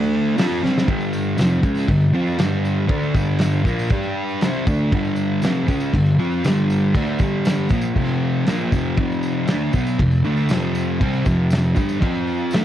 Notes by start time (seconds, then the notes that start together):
Already playing: D3 A3 D4
0.37 F3 C4 F4, snare, open hi-hat, tambourine
0.63 C3 G3 C4, snare
0.78 snare
0.87 G2 D3 G3, kick, crash
1.01 tambourine
1.13 tambourine
1.38 F2 C3 F3, snare, tambourine, crash
1.62 C#3 G#3 C#4, kick, tambourine
1.75 tambourine
1.88 G2 D3, kick, crash
2.01 tambourine
2.13 F3 C4 F4, tambourine
2.27 tambourine
2.38 G2 D3 G3, snare, tambourine, crash
2.65 tambourine
2.88 D3 A3 D4, kick, crash
3.03 tambourine
3.14 G2 D3 G3, kick, tambourine
3.39 snare, tambourine, crash
3.64 A#2 F3 A#3, kick, tambourine
3.79 tambourine
3.90 G3 D4 G4, kick, crash
4.03 tambourine
4.28 tambourine
4.41 C3 G3 C4, snare, tambourine, crash
4.54 tambourine
4.67 D3 A3 D4, kick, tambourine
4.92 G2 D3 G3, kick, crash
5.04 tambourine
5.16 tambourine
5.42 F2 C3 F3, snare, tambourine, crash
5.68 C#3 G#3 C#4, kick, tambourine
5.80 tambourine
5.93 G2 D3, kick, crash
6.06 tambourine
6.18 F3 C4 F4, tambourine
6.32 tambourine
6.43 G2 D3 G3, snare, tambourine, crash
6.57 tambourine
6.70 tambourine
6.95 D3 A3 D4, kick, tambourine, crash
7.07 tambourine
7.19 G2 D3 G3, kick, tambourine
7.45 snare, tambourine, crash
7.57 tambourine
7.69 A#2 F3 A#3, kick, tambourine
7.81 tambourine
7.95 F2 C3 F3, kick, tambourine, crash
8.07 tambourine
8.46 A#2 F3 A#3, snare, tambourine, crash
8.72 F2 C3 F3, kick, tambourine
8.97 F2 C3 F3, kick, crash
9.12 tambourine
9.23 tambourine
9.47 D3 A3 D4, snare, tambourine, crash
9.72 B2 F#3 B3, kick, tambourine
9.87 tambourine
9.99 F2 C3, kick, crash
10.11 tambourine
10.24 D3 A3 D4, tambourine
10.37 tambourine
10.49 F2 C3 F3, snare, tambourine, crash
10.62 tambourine
10.75 tambourine
11.00 C3 G3 C4, kick, crash
11.13 tambourine
11.25 F2 C3 F3, kick, tambourine
11.50 snare, tambourine, crash
11.75 G2 D3 G3, kick, tambourine
11.89 tambourine
12.00 F3 C4 F4, kick, crash
12.15 tambourine
12.27 tambourine
12.38 tambourine
12.51 A2 E3, snare, tambourine, crash
12.55 A3